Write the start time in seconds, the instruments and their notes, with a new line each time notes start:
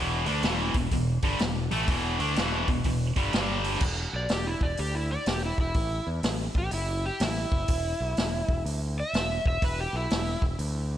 Already playing: fingered electric bass E1, distorted electric guitar E2 B2 E3
0.26 fingered electric bass D2, distorted electric guitar D3 A3 D4, open hi-hat
0.43 fingered electric bass E1, distorted electric guitar E2 B2 E3, snare, open hi-hat
0.74 fingered electric bass E1, distorted electric guitar E2 B2, kick, open hi-hat
0.91 fingered electric bass E1, distorted electric guitar E2 B2, kick, open hi-hat
1.22 fingered electric bass G1, distorted electric guitar G2 D3 G3, kick, open hi-hat
1.39 fingered electric bass E1, distorted electric guitar E2 B2, snare, open hi-hat
1.71 fingered electric bass A1, distorted electric guitar A2 E3 A3, open hi-hat
1.88 fingered electric bass E1, distorted electric guitar E2 B2 E3, kick, open hi-hat
2.19 fingered electric bass D2, distorted electric guitar D3 A3 D4, open hi-hat
2.36 fingered electric bass E1, distorted electric guitar E2 B2 E3, snare, open hi-hat
2.68 fingered electric bass E1, distorted electric guitar E2 B2, kick, open hi-hat
2.84 fingered electric bass E1, distorted electric guitar E2 B2, kick, open hi-hat
3.16 fingered electric bass G1, distorted electric guitar G2 D3 G3, kick, open hi-hat
3.33 fingered electric bass G1, distorted electric guitar G2 D3 G3, snare, open hi-hat
3.64 open hi-hat
3.74 snare
3.81 fingered electric bass E1, kick, crash
4.13 fingered electric bass B1, electric slide guitar D5
4.29 fingered electric bass E1, electric slide guitar G4, snare, open hi-hat
4.47 electric slide guitar E4
4.61 fingered electric bass E1, electric slide guitar D5, kick
4.77 fingered electric bass D2, electric slide guitar G4, open hi-hat
4.95 electric slide guitar E4
5.11 electric slide guitar D5
5.26 fingered electric bass E1, electric slide guitar G4, snare, open hi-hat
5.46 electric slide guitar E4
5.58 fingered electric bass E1, electric slide guitar E4, kick
5.74 fingered electric bass A1, kick, open hi-hat
6.07 fingered electric bass E2
6.23 fingered electric bass A1, snare, open hi-hat
6.54 fingered electric bass A1, electric slide guitar G4, kick
6.71 fingered electric bass F#1, electric slide guitar E4, open hi-hat
7.06 electric slide guitar G4
7.20 fingered electric bass A1, electric slide guitar E4, snare, open hi-hat
7.52 fingered electric bass F#1, kick
7.68 fingered electric bass E1, kick, open hi-hat
8.00 fingered electric bass B1
8.17 fingered electric bass E1, snare, open hi-hat
8.48 fingered electric bass E1, kick
8.65 fingered electric bass D2, open hi-hat
9.00 electric slide guitar E5
9.13 fingered electric bass E1, snare, open hi-hat
9.46 fingered electric bass E1, electric slide guitar E5, kick
9.62 fingered electric bass E1, electric slide guitar B4, kick, open hi-hat
9.80 electric slide guitar G4
9.93 fingered electric bass B1, electric slide guitar E4
10.10 fingered electric bass E1, snare, open hi-hat
10.42 fingered electric bass E1, kick
10.59 fingered electric bass D2, open hi-hat